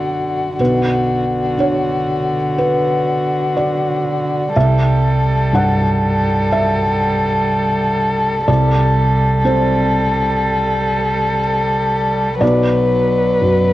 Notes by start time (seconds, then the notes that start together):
Already playing: B1 F#2 D3 F#4 D5 E5
0.59 B1 D3 F#4 B4
1.57 D4 C#5
2.58 B4
3.57 D5
4.56 C2 G3 A4 E5
5.53 G2 F#5
6.52 E5
8.47 C2 G3 A4 D5
9.45 C4 C5
12.40 B1 F#3 B4 D5
13.41 F#2